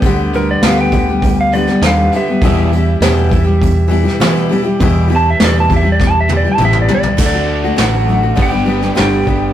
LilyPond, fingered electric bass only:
\new Staff \with { instrumentName = "Fingered electric bass" } { \clef bass \time 4/4 \key g \major \tempo 4 = 101 d,4 d,2 ees,8 r8 | e,4 e,2 e8 r8 | e,4 e,2 a,,8 r8 | d,4 a,,4 g,,4 g,,8 g,,8 | }